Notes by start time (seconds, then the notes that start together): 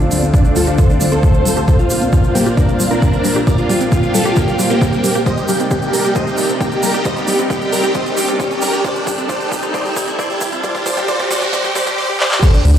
Already playing: D2 D3 A3 C4 F4, riser
0.00 D4, closed hi-hat, shaker
0.11 G3 D4, open hi-hat, shaker
0.22 C4, closed hi-hat, shaker
0.34 C4 D4, kick, closed hi-hat, shaker
0.45 D4, closed hi-hat, shaker
0.56 G3 F4 A4, open hi-hat, shaker
0.67 D4 G4, closed hi-hat, shaker
0.78 G3 A4 C5, kick, closed hi-hat, shaker
0.89 D4, closed hi-hat, shaker
1.01 G3 D4, open hi-hat, shaker
1.11 C4 A4 C5, closed hi-hat, shaker
1.23 C4, kick, closed hi-hat, shaker
1.33 closed hi-hat, shaker
1.45 G3, open hi-hat, shaker
1.57 G4, closed hi-hat, shaker
1.68 A#2 G3 A#3 D4 A4 C5, kick, closed hi-hat, shaker
1.79 F4, closed hi-hat, shaker
1.90 G3 F4, open hi-hat, shaker
2.02 C4, closed hi-hat, shaker
2.13 C4 F4, kick, closed hi-hat, shaker
2.24 F4, closed hi-hat, shaker
2.35 G3 A#3 G4, open hi-hat, shaker
2.46 F4 G4, closed hi-hat, shaker
2.57 G3 D4 A#4, kick, closed hi-hat, shaker
2.68 F4, closed hi-hat, shaker
2.80 G3 F4, open hi-hat, shaker
2.91 C4 D4 A#4, closed hi-hat, shaker
3.02 C4, kick, closed hi-hat, shaker
3.13 closed hi-hat, shaker
3.24 G3, open hi-hat, shaker
3.36 G4, closed hi-hat, shaker
3.47 G3 G4 A#4 D5, kick, closed hi-hat, shaker
3.58 F4, closed hi-hat, shaker
3.69 G3 F4, open hi-hat, shaker
3.80 C4, closed hi-hat, shaker
3.92 C4 F4, kick, closed hi-hat, shaker
4.03 F4, closed hi-hat, shaker
4.14 G3 F4 A4, open hi-hat, shaker
4.25 F4 G4, closed hi-hat, shaker
4.36 G3 A#3 G4, kick, closed hi-hat, shaker
4.48 F4, closed hi-hat, shaker
4.59 G3 F4, open hi-hat, shaker
4.70 A#3 C4 G4, closed hi-hat, shaker
4.81 C4, kick, closed hi-hat, shaker
4.93 closed hi-hat, shaker
5.04 G3, open hi-hat, shaker
5.15 G4, closed hi-hat, shaker
5.26 C3 G3 D4 D#4 C5 D#5, kick, closed hi-hat, shaker
5.37 G4, closed hi-hat, shaker
5.48 G3 G4, open hi-hat, shaker
5.60 C4, closed hi-hat, shaker
5.71 C4 G4, kick, closed hi-hat, shaker
5.82 G4, closed hi-hat, shaker
5.93 G3 G4 A#4, open hi-hat, shaker
6.04 G4, closed hi-hat, shaker
6.15 G3 C5 D#5, kick, closed hi-hat, shaker
6.27 G4, closed hi-hat, shaker
6.37 G3 G4, open hi-hat, shaker
6.49 C4, closed hi-hat, shaker
6.60 C4 G4, kick, closed hi-hat, shaker
6.72 G4, closed hi-hat, shaker
6.83 G3 G4 A#4, open hi-hat, shaker
6.94 G4, closed hi-hat, shaker
7.05 G3 C5 D#5, kick, closed hi-hat, shaker
7.16 G4, closed hi-hat, shaker
7.27 G3 G4, open hi-hat, shaker
7.39 C4, closed hi-hat, shaker
7.50 C4 G4, kick, closed hi-hat, shaker
7.61 G4, closed hi-hat, shaker
7.72 G3 G4 A#4, open hi-hat, shaker
7.83 G4, closed hi-hat, shaker
7.94 G3 C5 D#5, kick, closed hi-hat, shaker
8.06 G4, closed hi-hat, shaker
8.17 G3 G4, open hi-hat, shaker
8.28 C4, closed hi-hat, shaker
8.40 C4 G4, kick, closed hi-hat, shaker
8.51 G4, closed hi-hat, shaker
8.62 G3 G4 A#4, open hi-hat, shaker
8.73 G4, closed hi-hat, shaker
8.84 G2 G3 A4 C5 D5, kick, closed hi-hat, shaker
8.95 G4, closed hi-hat, shaker
9.07 G3 G4, kick, open hi-hat, shaker
9.18 C4, closed hi-hat, shaker
9.29 G3 C5 D5, kick, closed hi-hat, shaker
9.40 G4, closed hi-hat, shaker
9.52 G3 G4, kick, open hi-hat, shaker
9.62 C4, closed hi-hat, shaker
9.74 G3 C5 D5, kick, closed hi-hat, shaker
9.85 G4, closed hi-hat, shaker
9.96 G3 G4, kick, open hi-hat, shaker
10.08 C4, closed hi-hat, shaker
10.19 G3 C5 D5, kick, closed hi-hat, shaker
10.30 G4, closed hi-hat, shaker
10.41 G3 G4, kick, open hi-hat, shaker
10.52 C4, closed hi-hat, shaker
10.64 G3 C4 C5 D5, kick, closed hi-hat, noise sweep, shaker
10.75 G4, kick, closed hi-hat, shaker
10.86 G3 C5 D5, kick, open hi-hat, shaker
10.97 G4, kick, closed hi-hat, shaker
11.08 G3 C5 D5, kick, closed hi-hat, shaker
11.19 G4, kick, closed hi-hat, shaker
11.31 G3 C5 D5, kick, open hi-hat, shaker
11.42 G4, kick, closed hi-hat, shaker
11.53 G3 C5 D5, kick, closed hi-hat, shaker
11.64 G4, kick, closed hi-hat, shaker
11.75 G3 C5 D5, kick, open hi-hat, shaker
11.87 G4, kick, closed hi-hat, shaker
11.98 C5 D5
12.09 G4
12.20 C5 D5, clap
12.31 G4, clap
12.43 F3 C4 D4 A4 C5, kick, closed hi-hat, crash, shaker
12.54 D4, closed hi-hat, shaker
12.65 D2 D4, open hi-hat